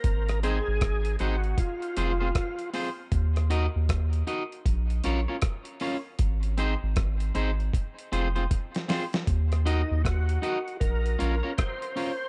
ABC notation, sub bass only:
X:1
M:4/4
L:1/16
Q:"Swing 16ths" 1/4=78
K:Ebdor
V:1 name="Sub bass" clef=bass
A,,,3 A,,, A,,,2 A,,,2 z2 F,,,2 z4 | E,,3 E,,3 z2 B,,,2 B,,, z4 z | A,,,3 A,,, A,,,2 A,,,2 z2 F,,,2 z4 | E,,3 E,,3 z2 B,,,2 B,,, z4 z |]